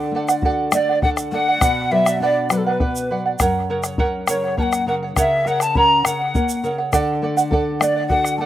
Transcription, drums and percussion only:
0.29 bombo rim, shaker
0.42 bombo low
0.72 bombo rim, shaker
1.02 bombo rim, bombo low
1.17 bombo rim, shaker
1.61 bombo rim, bombo low, shaker
2.06 bombo rim, shaker
2.50 bombo rim, shaker
2.80 bombo rim, bombo low
2.96 shaker
3.39 bombo rim, bombo low, shaker
3.84 bombo rim, shaker
3.98 bombo low
4.28 bombo rim, shaker
4.58 bombo rim, bombo low
4.73 bombo rim, shaker
5.16 bombo rim, bombo low, shaker
5.45 bombo rim, shaker
5.60 bombo rim, shaker
5.75 bombo low
6.05 bombo rim, shaker
6.35 bombo low, shaker
6.49 shaker
6.64 shaker
6.79 bombo rim
6.93 bombo rim, bombo low, shaker
7.38 shaker
7.52 bombo low
7.81 bombo rim, shaker
8.10 bombo rim, bombo low
8.25 bombo rim, shaker

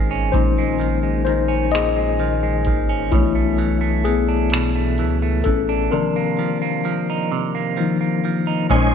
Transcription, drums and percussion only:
0.34 kick, closed hi-hat
0.81 closed hi-hat
1.27 closed hi-hat
1.71 finger snap, closed hi-hat
2.19 closed hi-hat
2.65 kick, closed hi-hat
3.12 kick, closed hi-hat
3.59 closed hi-hat
4.05 closed hi-hat
4.50 finger snap, closed hi-hat
4.98 closed hi-hat
5.44 kick, closed hi-hat
8.70 kick, closed hi-hat

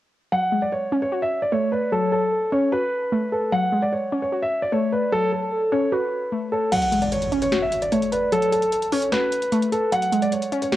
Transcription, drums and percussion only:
6.72 closed hi-hat, crash
6.82 closed hi-hat
6.92 closed hi-hat
7.02 closed hi-hat
7.12 closed hi-hat
7.22 closed hi-hat
7.32 closed hi-hat
7.42 closed hi-hat
7.52 snare, closed hi-hat
7.72 closed hi-hat
7.82 closed hi-hat
7.92 closed hi-hat
8.02 closed hi-hat
8.12 closed hi-hat
8.32 closed hi-hat
8.42 closed hi-hat
8.52 closed hi-hat
8.62 closed hi-hat
8.72 closed hi-hat
8.82 closed hi-hat
8.92 open hi-hat
9.02 closed hi-hat
9.12 snare, closed hi-hat
9.32 closed hi-hat
9.42 closed hi-hat
9.52 closed hi-hat
9.62 closed hi-hat
9.72 closed hi-hat
9.92 closed hi-hat
10.02 closed hi-hat
10.12 closed hi-hat
10.22 closed hi-hat
10.32 closed hi-hat
10.42 closed hi-hat
10.52 closed hi-hat
10.62 closed hi-hat
10.72 snare, closed hi-hat

